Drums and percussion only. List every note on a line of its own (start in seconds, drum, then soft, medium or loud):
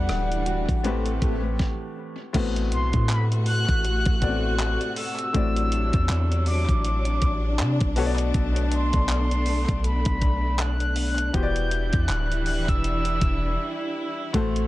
0.09 cross-stick loud
0.09 closed hi-hat medium
0.32 closed hi-hat soft
0.46 closed hi-hat medium
0.69 kick medium
0.69 closed hi-hat soft
0.84 closed hi-hat medium
1.06 closed hi-hat medium
1.22 kick medium
1.22 closed hi-hat medium
1.59 kick loud
1.59 snare medium
2.34 kick loud
2.34 closed hi-hat medium
2.34 crash loud
2.56 closed hi-hat medium
2.72 closed hi-hat medium
2.93 kick loud
2.93 closed hi-hat medium
3.09 clap loud
3.09 closed hi-hat medium
3.32 closed hi-hat soft
3.46 open hi-hat medium
3.69 kick medium
3.69 closed hi-hat medium
3.85 closed hi-hat medium
4.05 kick loud
4.05 closed hi-hat medium
4.22 kick medium
4.22 closed hi-hat medium
4.60 clap loud
4.60 closed hi-hat medium
4.81 closed hi-hat soft
4.96 open hi-hat medium
5.19 closed hi-hat medium
5.34 kick loud
5.34 closed hi-hat medium
5.56 closed hi-hat medium
5.72 closed hi-hat medium
5.93 kick loud
5.93 closed hi-hat medium
6.09 clap loud
6.09 closed hi-hat medium
6.32 closed hi-hat soft
6.46 open hi-hat medium
6.69 kick medium
6.69 closed hi-hat soft
6.85 closed hi-hat medium
7.05 closed hi-hat medium
7.22 kick medium
7.22 closed hi-hat medium
7.59 clap loud
7.59 closed hi-hat medium
7.80 kick loud
7.80 closed hi-hat soft
7.96 open hi-hat medium
8.18 closed hi-hat medium
8.34 kick loud
8.34 closed hi-hat medium
8.56 closed hi-hat medium
8.72 closed hi-hat medium
8.93 kick loud
8.93 closed hi-hat medium
9.09 clap loud
9.09 closed hi-hat medium
9.31 closed hi-hat soft
9.46 open hi-hat medium
9.69 kick medium
9.69 closed hi-hat medium
9.84 closed hi-hat medium
10.05 kick loud
10.05 closed hi-hat medium
10.22 kick loud
10.22 closed hi-hat medium
10.59 clap loud
10.59 closed hi-hat medium
10.80 closed hi-hat soft
10.96 open hi-hat medium
11.18 closed hi-hat medium
11.34 kick loud
11.34 closed hi-hat medium
11.56 closed hi-hat medium
11.71 closed hi-hat medium
11.93 kick loud
11.93 closed hi-hat medium
12.09 clap loud
12.09 closed hi-hat medium
12.32 closed hi-hat soft
12.46 open hi-hat medium
12.68 kick medium
12.68 closed hi-hat medium
12.84 closed hi-hat medium
13.05 closed hi-hat medium
13.21 kick loud
13.21 closed hi-hat medium
14.34 kick loud
14.34 closed hi-hat medium
14.56 closed hi-hat medium